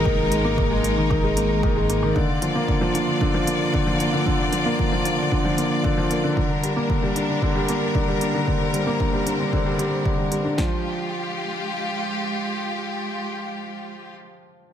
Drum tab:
HH |-x-x-x-x|-x-x-x-x|-x-x-x-x|-x-x-x-x|
SD |--------|--------|--------|--------|
BD |o-o-o-o-|o-o-o-o-|o-o-o-o-|o-o-o-o-|

HH |-x-x-x-x|--------|--------|
SD |--------|o-------|--------|
BD |o-o-o-o-|o-------|--------|